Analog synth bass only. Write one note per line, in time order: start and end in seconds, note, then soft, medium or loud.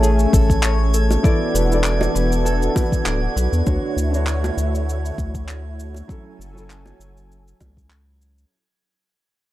0.00 0.27 A1 medium
0.33 1.18 A1 loud
1.54 2.09 E1 medium
2.15 2.69 E1 medium
3.06 3.28 D1 medium
3.36 3.48 B1 medium
3.53 3.62 E2 medium
3.67 3.78 D2 medium
3.97 4.51 D2 medium
4.57 5.12 D2 medium
5.18 6.03 D2 loud
6.39 6.93 F#1 medium
7.00 7.54 F#1 medium
7.61 8.45 C#2 medium